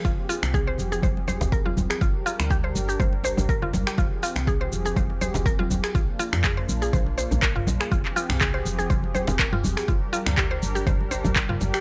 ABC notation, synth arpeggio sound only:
X:1
M:4/4
L:1/16
Q:"Swing 16ths" 1/4=122
K:Fdor
V:1 name="Synth arpeggio sound"
F z F z A c z A c z c z B F z A | F z F z G c z G c z c z B F z G | F z F z A c z A c z c z B F z A | F z F z A c z A c z c z B F z A |
F z F z A c z A c z c z B F z A | F z F z G c z G c z c z B F z G |]